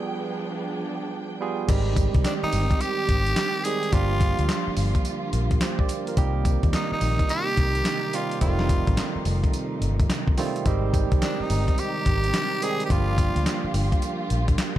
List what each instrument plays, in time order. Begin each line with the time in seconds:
Already playing: string section F3 B3 D4 G#4 G5, tine electric piano G3 B3 F4 G#4
1.41 tine electric piano G3 B3 F4 G#4
1.68 fingered electric bass G#1, tine electric piano D#3 G3 G#3 C4 G4, string section D#3 C4 G4, kick, closed hi-hat, crash, tambourine
1.96 kick, closed hi-hat, tambourine
2.14 fingered electric bass C2, kick, closed hi-hat
2.24 tenor saxophone D4, snare, clap, closed hi-hat, tambourine
2.43 tenor saxophone D#4, muted fingered electric bass stroke
2.53 fingered electric bass G1, open hi-hat, tambourine
2.71 kick, closed hi-hat
2.81 tenor saxophone G4, closed hi-hat, tambourine
3.09 fingered electric bass G#1, kick, closed hi-hat
3.27 closed hi-hat
3.36 snare, clap, closed hi-hat, tambourine
3.64 tine electric piano D#3 G3 G#3 C4 G4, tenor saxophone G#4, closed hi-hat, tambourine
3.83 closed hi-hat
3.93 fingered electric bass G1, string section D3 F3 A#3 F4, tine electric piano F3 G3 A#3 D4 G4, tenor saxophone F4, kick, closed hi-hat, tambourine
4.21 kick, closed hi-hat, tambourine
4.39 fingered electric bass D2, closed hi-hat
4.49 snare, clap, closed hi-hat, tambourine
4.67 muted fingered electric bass stroke
4.77 fingered electric bass G1, open hi-hat, tambourine
4.95 kick, closed hi-hat
5.05 closed hi-hat, tambourine
5.33 fingered electric bass A#1, closed hi-hat
5.51 kick, closed hi-hat
5.61 tine electric piano G4 C5, snare, clap, closed hi-hat, tambourine
5.79 tine electric piano G4 D5, kick
5.89 closed hi-hat, tambourine
6.07 tine electric piano F4 A#4, closed hi-hat
6.17 fingered electric bass C2, string section C3 D#3 D#4, tine electric piano D#3 G3 A#3 C4 G4, kick, closed hi-hat, tambourine
6.45 kick, closed hi-hat, tambourine
6.63 fingered electric bass D#2, kick, closed hi-hat
6.73 tenor saxophone D#4, snare, clap, closed hi-hat, tambourine
6.92 tenor saxophone D#4, muted fingered electric bass stroke
7.01 fingered electric bass A#1, open hi-hat, tambourine
7.19 kick, closed hi-hat
7.29 tenor saxophone G4, closed hi-hat, tambourine
7.57 fingered electric bass C2, kick, closed hi-hat
7.75 closed hi-hat
7.85 snare, clap, closed hi-hat, tambourine
8.13 tine electric piano D#3 G3 A#3 C4 G4, tenor saxophone F4, closed hi-hat, tambourine
8.31 closed hi-hat
8.41 fingered electric bass F1, tine electric piano D#3 G3 G#3 C4 F4, string section F3 A3, tenor saxophone F4, kick, closed hi-hat, tambourine
8.49 tine electric piano A3
8.59 snare
8.69 kick, closed hi-hat, tambourine
8.87 fingered electric bass A1, kick, closed hi-hat
8.97 snare, clap, closed hi-hat, tambourine
9.15 muted fingered electric bass stroke
9.25 fingered electric bass F1, open hi-hat, tambourine
9.44 kick, closed hi-hat
9.54 closed hi-hat, tambourine
9.81 fingered electric bass G1, closed hi-hat
10.00 kick, closed hi-hat
10.10 snare, clap, closed hi-hat, tambourine
10.28 kick
10.37 tine electric piano D#3 G3 A3 C4 F4, snare, open hi-hat, tambourine
10.56 closed hi-hat
10.66 fingered electric bass G#1, string section D#3 C4 D#4 G4, tine electric piano D#3 G3 G#3 C4 G4, kick, closed hi-hat, tambourine
10.94 kick, closed hi-hat, tambourine
11.12 fingered electric bass C2, kick, closed hi-hat
11.22 tenor saxophone D4, snare, clap, closed hi-hat, tambourine
11.40 tenor saxophone D#4, muted fingered electric bass stroke
11.50 fingered electric bass G1, open hi-hat, tambourine
11.68 kick, closed hi-hat
11.78 tenor saxophone G4, closed hi-hat, tambourine
12.06 fingered electric bass G#1, kick, closed hi-hat
12.24 closed hi-hat
12.34 snare, clap, closed hi-hat, tambourine
12.62 tine electric piano D#3 G3 G#3 C4 G4, tenor saxophone G#4, closed hi-hat, tambourine
12.80 closed hi-hat
12.86 tenor saxophone G4
12.90 fingered electric bass G1, string section D3 F3 A#3 F4, tine electric piano F3 G3 A3 D4 G4, tenor saxophone F4, kick, closed hi-hat, tambourine
12.97 tine electric piano A#3
13.18 kick, closed hi-hat, tambourine
13.36 fingered electric bass D2, closed hi-hat
13.46 snare, clap, closed hi-hat, tambourine
13.64 muted fingered electric bass stroke
13.74 fingered electric bass G1, open hi-hat, tambourine
13.92 kick, closed hi-hat
14.02 closed hi-hat, tambourine
14.30 fingered electric bass A#1, closed hi-hat
14.48 kick, closed hi-hat
14.58 snare, clap, closed hi-hat, tambourine